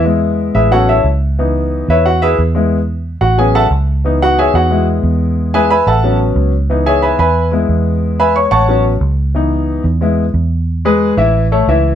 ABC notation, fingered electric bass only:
X:1
M:4/4
L:1/8
Q:1/4=181
K:E
V:1 name="Fingered electric bass" clef=bass
E,,3 A,,,3 C,,2- | C,,3 E,,3 E,,2- | E,,3 A,,,3 C,,2- | C,,3 E,,3 E,,2- |
E,,3 A,,,3 C,,2- | C,,3 E,,3 E,,2- | E,,3 A,,,3 C,,2- | C,,3 E,,3 E,,2- |
E,,3 A,,,3 C,,2 |]